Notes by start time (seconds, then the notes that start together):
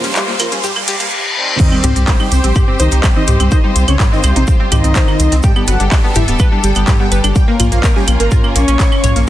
Already playing: A#3 F4 C5, riser
0.03 G3 C#4, snare, closed hi-hat, open hi-hat, shekere
0.09 snare, open hi-hat
0.15 G3 G4, snare, clap, closed hi-hat, shekere, shaker
0.27 G3 A#3, snare, shekere
0.39 F3 F4 A#4, closed hi-hat, claves, shaker, shekere
0.52 G3 C#4, closed hi-hat, shekere
0.64 G3 G4, closed hi-hat, mid tom, reverse cymbal, shaker, shekere
0.76 G3 A#3, claves, shekere
0.87 G3 G4, closed hi-hat, shaker, shekere
0.99 G3 A#3, closed hi-hat, shekere
1.36 D#3 G3 C4
1.60 D#3 C4 D#4 G4 C5 D#5, kick, closed hi-hat, crash, sub drop, shaker
1.72 G3 C4 G4, claves
1.83 C2 C3 C4 G4 C5, closed hi-hat, mid tom, shaker
1.96 C2 G3 C4 G4, closed hi-hat
2.07 G3 G4 C5, kick, snare, clap, closed hi-hat, open hi-hat
2.20 G3 D#4 G4, claves
2.32 C2 C3 C4 C5, closed hi-hat, shaker
2.44 A#1 G3 C4 G4, closed hi-hat
2.56 G3 G4, kick, closed hi-hat, mid tom, claves, shaker
2.68 G3 C4 G4
2.79 C2 D#3 D#4 C5 D#5, closed hi-hat, shaker
2.91 C2 D#4 G4, closed hi-hat
3.04 G3 G4, kick, snare, clap, closed hi-hat, claves, shaker
3.16 D#3 C4 D#4 D#5
3.27 C2 G3 G4, closed hi-hat, mid tom, shaker
3.40 C2 G3 C4 G4, closed hi-hat, claves
3.51 D#3 D#4 F4 C5 D#5, kick, closed hi-hat, shaker
3.64 G3 D#4 G4
3.76 C2 G3 G4, closed hi-hat, shaker
3.88 C2 C#3 C4 C#4 C#5, closed hi-hat, claves
4.00 G3 G4, kick, snare, clap, closed hi-hat, mid tom, shaker
4.12 D#3 C4 D#4 D#5, snare
4.23 C2 G3 G4 C5, closed hi-hat, claves, shaker
4.36 A#1 C3 C4 D#4 C5, closed hi-hat
4.47 G3 G4, kick, closed hi-hat, shaker
4.60 G3 C4 G4
4.72 C2 D#3 D#4 G4 D#5, closed hi-hat, mid tom, claves, shaker
4.84 C2 C4, closed hi-hat
4.95 C5, kick, snare, clap, closed hi-hat, shaker
5.08 D#4, claves
5.19 C2, closed hi-hat, shaker
5.32 C2 C4, snare, closed hi-hat
5.43 G3 D4 G4 A4 G5, kick, closed hi-hat, mid tom, shaker
5.56 G3 B3 G4, claves
5.67 G1 F#3 F#4 B4 F#5, closed hi-hat, shaker
5.80 G1 G3 D4 G4, closed hi-hat
5.92 G3 G4, kick, snare, clap, closed hi-hat, open hi-hat, claves
6.04 G3 B3 G4
6.15 G1 E3 E4 G4 E5, closed hi-hat, mid tom, shaker
6.28 D1 G3 B3 G4, closed hi-hat
6.39 G3 G4 B4, kick, closed hi-hat, claves, shaker
6.52 G3 D4 G4
6.63 G1 G3 G4 G5, closed hi-hat, shaker
6.75 G1 G3 B3 G4, closed hi-hat, claves
6.87 G3 G4, kick, snare, clap, closed hi-hat, mid tom, shaker
7.00 G3 B3 G4 G5
7.11 G1 G3 G4 B4, closed hi-hat, shaker
7.24 G1 G3 D4 G4, closed hi-hat, claves
7.35 G3 A#3 C#4 F4 G4 G5, kick, closed hi-hat, shaker
7.48 A#3 A#4
7.59 A#1 A#3 F4 A#4, closed hi-hat, mid tom, claves, shaker
7.72 A#1 F3 A#3 F4 F5, closed hi-hat
7.83 A#3 A#4, kick, snare, clap, closed hi-hat, shaker
7.96 G3 C#4 G4 G5, snare
8.07 A#1 A#3 A#4, closed hi-hat, claves, shaker
8.20 G#1 A#3 A#4 A#5, closed hi-hat
8.31 F4 A#4, kick, closed hi-hat, mid tom, shaker
8.44 A#3 A#4, claves
8.55 A#1 A#3 C#4 C#5 C#6, closed hi-hat, shaker
8.68 A#1 C#4, closed hi-hat
8.80 kick, snare, clap, closed hi-hat, shaker
8.92 C#4, claves
9.04 A#1 C#5, closed hi-hat, mid tom, shaker
9.16 A#1 A#3, snare, closed hi-hat